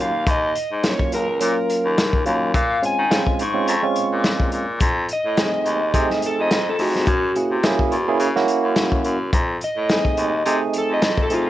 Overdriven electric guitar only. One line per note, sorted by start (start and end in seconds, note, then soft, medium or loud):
0.02 0.28 F5 medium
0.31 0.84 D#5 medium
0.88 1.13 C#5 medium
1.14 2.24 A#4 medium
2.56 2.83 F5 medium
2.86 3.39 G#5 medium
3.43 3.69 C#6 medium
3.71 4.80 C#6 loud
5.13 6.21 D#5 loud
6.26 6.40 A4 medium
6.41 6.67 D#5 medium
6.70 6.82 A4 medium
6.82 8.46 F#4 medium
9.64 10.72 D#5 medium
10.78 10.91 A4 medium
10.93 11.19 D#5 medium
11.23 11.33 A4 medium
11.34 11.50 F4 medium